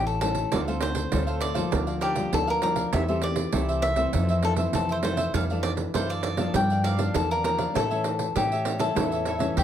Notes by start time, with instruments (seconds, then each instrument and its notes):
Already playing: upright bass A1, nylon-string guitar E3 A3 C#4 E4
0.07 cavaquinho A4, pandeiro
0.21 nylon-string guitar A3 C#4 E4, cavaquinho A4, pandeiro
0.35 pandeiro
0.52 upright bass D2, nylon-string guitar D3 A3 C4 F4, cavaquinho D4 A4 C5 D5 F5, pandeiro
0.68 nylon-string guitar A3 C4 F4, cavaquinho A4 C5 F5, pandeiro
0.81 cavaquinho C5, muted cavaquinho stroke, pandeiro
0.95 muted cavaquinho stroke, pandeiro
1.12 upright bass D2, nylon-string guitar A2 A3 C4 F4, cavaquinho D4 A4 C5 F5, pandeiro
1.27 cavaquinho A4 C5 F5, pandeiro
1.41 cavaquinho D5, pandeiro
1.54 nylon-string guitar F3 A#3 F4, cavaquinho A4 C5 F5, pandeiro
1.71 upright bass D2, nylon-string guitar D3, cavaquinho D4 A#4 D5 F5, pandeiro
1.87 cavaquinho A#4 D5 F5, pandeiro
2.01 cavaquinho D4 G4 A#4 D5 F5, pandeiro
2.15 nylon-string guitar F3 A#3 F4, cavaquinho A#4 D5 F5, pandeiro
2.32 upright bass D2, nylon-string guitar D3, cavaquinho A4, pandeiro
2.47 cavaquinho A#4 D5 F5, pandeiro
2.62 nylon-string guitar F3 A#3 F4, cavaquinho D4 A#4 D5 F5, pandeiro
2.76 cavaquinho A#4 D5 F5, pandeiro
2.92 upright bass E2, nylon-string guitar E3 A3 C4 G4, cavaquinho E4 A4 C5 E5, pandeiro
3.08 nylon-string guitar A3 C4 G4, cavaquinho A4 C5 E5, pandeiro
3.22 cavaquinho D5, muted cavaquinho stroke, pandeiro
3.36 muted cavaquinho stroke, pandeiro
3.52 upright bass C2, nylon-string guitar E3 A3 C4 G4, cavaquinho E4 A4 C5 E5, pandeiro
3.68 cavaquinho A4 C5 E5, pandeiro
3.82 cavaquinho E5, pandeiro
3.96 nylon-string guitar E3 A3 C4, cavaquinho A4 C5 E5, pandeiro
4.12 nylon-string guitar F2, upright bass F2, cavaquinho F4 A4 C5 E5, pandeiro
4.29 cavaquinho A4 C5 E5, pandeiro
4.43 cavaquinho F4 A4 C5 E5, pandeiro
4.56 nylon-string guitar E3 A3 C4, cavaquinho A4 C5 E5, pandeiro
4.73 upright bass F2, nylon-string guitar C3, cavaquinho A4, pandeiro
4.89 cavaquinho A4 C5 E5, pandeiro
5.02 nylon-string guitar E3 A3 C4, cavaquinho F4 A4 C5 E5, pandeiro
5.17 cavaquinho A4 C5 E5, pandeiro
5.33 nylon-string guitar F2 E3 A3 D4, upright bass F2, cavaquinho E4 A4 D5 F5, pandeiro
5.50 nylon-string guitar E3 A3 D4, cavaquinho A4 D5 F5, pandeiro
5.63 cavaquinho D5, muted cavaquinho stroke, pandeiro
5.77 muted cavaquinho stroke, pandeiro
5.94 upright bass F#2, nylon-string guitar E3 A3 D4, cavaquinho E4 A4 C5 D5 F5, pandeiro
6.09 cavaquinho A4 D5 F5, pandeiro
6.23 cavaquinho D5, pandeiro
6.37 nylon-string guitar F3 A#3 D4, cavaquinho A4 D5 F5, pandeiro
6.53 nylon-string guitar G2, upright bass G2, cavaquinho G4 A#4 D5 F5 G5, pandeiro
6.70 cavaquinho A#4 D5 F5, pandeiro
6.84 cavaquinho G4 A#4 D5 F5, pandeiro
6.97 nylon-string guitar F3 A#3 D4, cavaquinho A#4 D5 F5, pandeiro
7.14 upright bass E2, nylon-string guitar D3, cavaquinho A4, pandeiro
7.31 cavaquinho A#4 D5 F5, pandeiro
7.43 nylon-string guitar F3 A#3 D4, cavaquinho G4 A#4 D5 F5, pandeiro
7.58 cavaquinho A#4 D5 F5, pandeiro
7.74 nylon-string guitar A2 E3 A3 C#4, upright bass A2, cavaquinho E4 A4 C#5 E5, pandeiro
7.90 nylon-string guitar E3 A3 C#4, cavaquinho A4 C#5 E5, pandeiro
8.04 muted cavaquinho stroke, pandeiro
8.19 muted cavaquinho stroke, pandeiro
8.35 upright bass A2, nylon-string guitar E3 A3 C#4, cavaquinho E4 G4 A4 C#5 E5, pandeiro
8.52 cavaquinho A4 C#5 E5, pandeiro
8.65 pandeiro
8.78 nylon-string guitar E3 A3 C#4, cavaquinho A4 C#5 E5, pandeiro
8.94 upright bass E2, nylon-string guitar A2 E3 A3 C#4, cavaquinho E4 A4 C#5, pandeiro
8.98 cavaquinho E5
9.12 cavaquinho A4 C#5 E5, pandeiro
9.25 cavaquinho E4 A4 C#5 E5, pandeiro
9.38 nylon-string guitar E3 A3 C#4, cavaquinho A4 C#5 E5, pandeiro
9.57 upright bass D#2, nylon-string guitar E3, cavaquinho G4, pandeiro